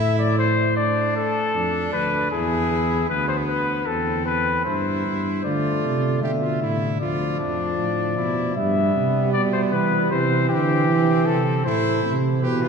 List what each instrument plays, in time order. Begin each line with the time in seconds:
Already playing: tuba A2, trumpet E4
0.00 trumpet E5
0.19 trumpet D5
0.38 trumpet C5
0.77 trumpet D4 D5
1.16 trumpet A4
1.55 tuba F2, trumpet D4
1.93 tuba D2, trumpet B4
2.32 tuba E2, trumpet E4 G#4
3.10 tuba D2, trumpet B3 B4
3.29 trumpet C5
3.48 trumpet B4
3.86 tuba E2, trumpet C4 A4
4.26 trumpet B4
4.65 tuba G2, trumpet E4 C5
5.06 tuba G2
5.44 tuba D3, trombone A3, trumpet F4 D5
5.84 tuba C3
6.22 tuba B2, trombone D3, trumpet G4 E5
6.42 trumpet F4
6.62 tuba A2, trumpet E4
7.00 tuba D2, trombone F3, trumpet F4 D5
7.39 tuba F2, trumpet D4
7.79 tuba A2
8.17 tuba B2, trumpet E4
8.56 tuba G2, trombone G3, trumpet B3 E5
8.95 tuba C3
9.33 tuba B2, trumpet D5
9.53 trumpet C5
9.72 tuba E3, trumpet B4
10.11 tuba C3, trombone E3, trumpet C4 C5
10.49 tuba D3, trumpet G4
10.89 tuba E3
11.26 tuba C3, trumpet A4
11.65 tuba A2, trombone A3, trumpet E4 C5
12.04 tuba C3
12.42 tuba B2, trombone E3, trumpet G4 B4
12.62 trumpet F4